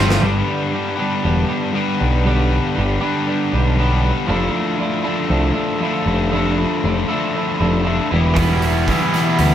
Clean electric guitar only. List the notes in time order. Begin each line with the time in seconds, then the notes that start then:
0.21 G2 D3 G3 B3 D4 G4
0.48 G3 B3 D4 G4
0.71 G3 B3 D4 G4
0.99 G2 D3 G3 B3 D4 G4
1.24 G3 B3 D4 G4
1.48 G2 D3 G3 B3 D4 G4
1.73 G3 B3 D4 G4
1.98 G3 B3 D4 G4
2.25 G2 D3 G3 B3 D4 G4
2.50 G3 B3 D4 G4
2.75 G3 B3 D4 G4
3.01 G2 D3 G3 B3 D4 G4
3.27 G3 B3 D4 G4
3.52 G2 D3 G3 B3 D4 G4
3.77 G3 B3 D4 G4
4.03 G3 B3 D4 G4
4.27 F3 A3 D4 E4
4.54 A3 D4 E4
4.79 F3 A3 D4 E4
5.03 F3 A3 D4 E4
5.29 F3 A3 D4 E4
5.54 F3 A3 D4 E4
5.80 F3 A3 D4 E4
6.07 A3 D4 E4
6.31 F3 A3 D4 E4
6.58 A3 D4 E4
6.84 F3 A3 D4 E4
7.08 F3 A3 D4 E4
7.35 F3 A3 D4 E4
7.59 F3 A3 D4 E4
7.83 F3 A3 D4 E4
8.10 E2 B2 E3 G3 B3 E4
8.35 E2 B2 E3 G3 B3 E4
8.62 E3 G3 B3 E4
8.88 E3 G3 B3 E4
9.12 E2 B2 E3 G3 B3 E4
9.39 E3 G3 B3 E4